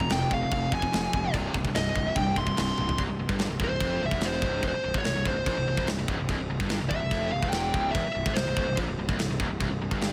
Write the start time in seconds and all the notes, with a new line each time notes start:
Already playing: F2 C3 F3 A#5
0.00 F2 C3, kick
0.10 F1 F2 C3 G5, snare, china
0.31 F1 F2 C3 F5, kick
0.42 F2 C3
0.51 F1 F2 C3 F5, kick, china
0.71 F1 F2 C3 F3 G#5, kick
0.82 F2 C3, kick
0.92 F1 F2 C3 F3, snare, china
1.13 F1 F2 C3, kick
1.24 F2 C3
1.34 C1 C2 G2 C3, kick, china
1.54 C1 C2 G2, kick
1.65 C2 G2, kick
1.75 C1 C2 G2 D#5, snare, china
1.95 C1 C2 G2, kick
2.06 C2 G2
2.16 C1 C2 G2 G5, kick, china
2.36 C1 C2 G2 C3 C6, kick
2.47 C2 G2, kick
2.57 C1 C2 G2 C3 C6, snare, china
2.78 C1 C2 G2, high tom
2.89 C2 G2, floor tom
2.98 C1 C2, kick, crash
3.09 C1 C2
3.19 C1 C2
3.29 G1 G2, kick
3.39 snare, crash
3.50 C1 C2
3.60 C1 C2, kick
3.64 C5
3.70 C1 C2
3.81 F1 F2, kick, crash
4.02 C1 C2 E5
4.11 E1 E2, kick
4.21 snare, crash
4.25 C5
4.42 C#1 C#2, kick
4.63 E1 E2, kick, crash
4.68 C5
4.74 muted distorted electric guitar stroke, muted picked electric bass stroke
4.84 C1 C2
4.94 G#1 G#2 C#5, kick
5.04 C1 C2, snare, crash
5.16 C1 C2
5.25 C#1 C#2 C5, kick
5.36 C1 C2
5.46 A#1 A#2, kick, crash
5.56 C1 C2
5.67 C1 C2
5.77 C1 C2, kick
5.87 C1 C2, snare, crash
5.99 C1 C2
6.08 C#1 C#2, kick
6.19 C1 C2
6.29 C1 C2, kick, crash
6.40 C1 C2
6.50 C1 C2
6.60 G1 G2, kick
6.69 snare, crash
6.81 C1 C2
6.90 C1 C2 E5, kick
7.02 C1 C2
7.11 F1 F2, kick, crash
7.32 C1 C2 F5
7.42 E1 E2, kick
7.49 G5, snare, crash
7.73 C#1 C#2, kick
7.92 E1 E5, kick, crash
7.96 E2
8.06 muted picked electric bass stroke, muted distorted electric guitar stroke
8.13 C1 C2 E5
8.26 G#1 G#2, kick
8.34 C1 C2 C5, snare, crash
8.47 C1 C2
8.57 C#1 C#2, kick
8.68 C1 C2
8.77 A#1 A#2, kick, crash
8.88 C1 C2
8.98 C1 C2
9.08 C1 C2, kick
9.19 C1 C2, snare, crash
9.29 C1 C2
9.40 C#1 C#2, kick
9.50 C1 C2
9.60 C1 C2, kick, crash
9.71 C1 C2
9.81 C1 C2
9.91 G1 G2, kick
10.01 snare, crash